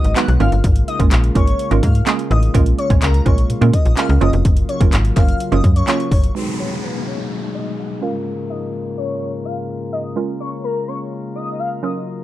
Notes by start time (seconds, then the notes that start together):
Already playing: D#3 F#3 G#3 B3 F#4 D#5
0.04 G#1, closed hi-hat
0.16 G#3 B3 D#4 F#4 B4 F#5, clap, closed hi-hat
0.28 B1, closed hi-hat
0.40 G#1 C#3 G#3 A#3 C#4 F4 A#4 F5, closed hi-hat
0.52 G1, closed hi-hat
0.64 G#1, kick, closed hi-hat
0.76 closed hi-hat
0.88 D#5, closed hi-hat
1.00 G#1 G#3 A#3 C#4 F4 A#4, kick, closed hi-hat
1.11 A#1, clap, closed hi-hat
1.24 closed hi-hat
1.35 G#1 G#3 A#3 C#4 F4 A#4 C#5, kick, closed hi-hat
1.47 closed hi-hat
1.59 closed hi-hat
1.71 G#1 G#3 A#3 C#4 F4 A#4, closed hi-hat
1.83 G#2 F5, kick, closed hi-hat
1.95 closed hi-hat
2.07 G#3 A#3 C#4 F4 G#4, clap, closed hi-hat
2.19 closed hi-hat
2.31 A1 D#5, closed hi-hat
2.43 closed hi-hat
2.54 A#1 G#3 A#3 C#4 F4 A#4, kick, closed hi-hat
2.66 closed hi-hat
2.78 C#5, closed hi-hat
2.90 A#1 G#3 A#3 C#4 F4 C#5, kick, closed hi-hat
3.02 C#2 A#4, clap, closed hi-hat
3.14 closed hi-hat
3.26 A#1 G#3 A#3 C#4 F4 A#4 C#5, kick, closed hi-hat
3.38 closed hi-hat
3.50 A#2, closed hi-hat
3.61 A#2 G#3 A#3 C#4 F4 A#4, closed hi-hat
3.73 D#5, kick, closed hi-hat
3.85 A#1, closed hi-hat
3.97 G#3 A#3 C#4 F4 A#4 F5, clap, closed hi-hat
4.09 C#2, closed hi-hat
4.21 F#1 F#3 A#3 C#4 F4 A#4 D#5, closed hi-hat
4.33 F1, closed hi-hat
4.45 F#1, kick, closed hi-hat
4.57 closed hi-hat
4.69 C#5, closed hi-hat
4.80 F#1 F#3 A#3 C#4 F4 A#4, kick, closed hi-hat
4.92 G#1, clap, closed hi-hat
5.05 closed hi-hat
5.16 F#1 F#3 A#3 C#4 F4 A#4 F5, kick, clap, closed hi-hat
5.28 closed hi-hat
5.40 closed hi-hat
5.52 F#1 F#3 A#3 C#4 F4 A#4 D#5, closed hi-hat
5.64 F#2, kick, closed hi-hat
5.76 C#5, closed hi-hat
5.88 F#3 A#3 C#4 F4 G#4 C#5, clap, closed hi-hat
6.00 closed hi-hat
6.11 G1 C#5, kick, open hi-hat
6.24 closed hi-hat
6.35 B2 F#3 G#3 D#4 F#4 G#4 B4, downlifter
6.59 C#5
6.83 B4
7.07 C#5
7.55 D#5
7.78 F#5
8.02 G#2 C#3 G#3 A#3 C#4 F4 A#4 F5
8.50 D#5
8.98 C#5
9.45 F5
9.93 D#5
10.16 G#3 C#4 F4 A#4
10.40 C#5
10.64 A#4
10.88 C#5
11.36 D#5
11.59 F5
11.83 F#3 C#4 F4 A#4 D#5